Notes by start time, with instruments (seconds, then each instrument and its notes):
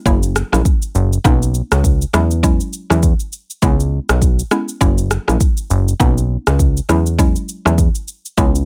0.06 analog synth bass F#1, synth pluck F#3 A#3 C#4 E4, kick, shaker
0.23 shaker
0.36 cross-stick, shaker
0.52 analog synth bass A#1, synth pluck F#3 A#3 C#4 E4, cross-stick, shaker
0.65 kick, shaker
0.82 shaker
0.95 analog synth bass F#1, shaker
1.13 shaker
1.24 analog synth bass B1, synth pluck A#3 B3 C#4 D#4, kick, shaker
1.42 shaker
1.54 shaker
1.71 analog synth bass C#2, cross-stick, shaker
1.84 kick, shaker
2.02 shaker
2.13 analog synth bass E2, synth pluck F#3 G#3 C#4 E4, cross-stick, shaker
2.31 shaker
2.43 synth pluck F#3 G#3 C#4 E4, kick, shaker
2.60 shaker
2.73 shaker
2.90 analog synth bass E2, synth pluck F#3 G#3 C#4 E4, cross-stick, shaker
3.03 kick, shaker
3.20 shaker
3.33 shaker
3.50 shaker
3.62 analog synth bass C#2, synth pluck G#3 B3 C#4 E4, kick, shaker
3.80 shaker
4.09 analog synth bass B1, cross-stick, shaker
4.22 kick, shaker
4.39 shaker
4.51 synth pluck G#3 B3 C#4 E4, cross-stick, shaker
4.68 shaker
4.81 analog synth bass F#1, synth pluck F#3 A#3 C#4 E4, kick, shaker
4.98 shaker
5.11 cross-stick, shaker
5.28 analog synth bass A#1, synth pluck F#3 A#3 C#4 E4, cross-stick, shaker
5.40 kick, shaker
5.57 shaker
5.70 analog synth bass F#1, shaker
5.88 shaker
6.00 analog synth bass B1, synth pluck A#3 B3 C#4 D#4, kick, shaker
6.18 shaker
6.47 analog synth bass C#2, cross-stick, shaker
6.59 kick, shaker
6.77 shaker
6.89 analog synth bass E2, synth pluck F#3 G#3 C#4 E4, cross-stick, shaker
7.06 shaker
7.19 synth pluck F#3 G#3 C#4 E4, kick, shaker
7.36 shaker
7.49 shaker
7.65 analog synth bass E2, synth pluck F#3 G#3 C#4 E4, cross-stick, shaker
7.78 kick, shaker
7.95 shaker
8.08 shaker
8.25 shaker
8.37 analog synth bass C#2, synth pluck G#3 B3 C#4 E4, kick, shaker
8.55 shaker